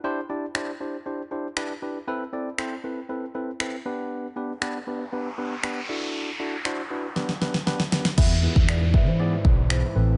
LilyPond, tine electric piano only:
\new Staff \with { instrumentName = "Tine electric piano" } { \time 4/4 \key g \major \tempo 4 = 118 <d' e' g' c''>8 <d' e' g' d''>8 <d' e' g' c''>8 <d' e' g' c''>8 <d' e' g' c''>8 <d' e' g' c''>8 <d' e' g' b'>8 <d' e' g' b'>8 | <c' e' a' b'>8 <c' e' a' d''>8 <c' e' a' c''>8 <c' e' a' b'>8 <c' e' a' b'>8 <c' e' a' b'>8 <c' e' a' b'>8 <b d' g' b'>8~ | <b d' g' b'>8 <b d' g' b'>8 <b d' g' b'>8 <b d' g' b'>8 <b d' g' b'>8 <b d' g' b'>8 <b d' g' b'>8 <d' e' fis' a'>8~ | <d' e' fis' a'>8 <d' e' fis' a'>8 <d' e' fis' c''>8 <d' e' fis' b'>8 <b d' g' b'>8 <b d' g' b'>8 <b d' g' b'>8 <b d' g' b'>8 |
\key e \phrygian <b e' gis' b'>8 <b e' gis' b'>8 <b e' gis' b'>8 <b e' gis' b'>8 <b e' gis' d''>8 <b e' gis' b'>8 <b e' gis' b'>8 <c' e' a' b'>8 | }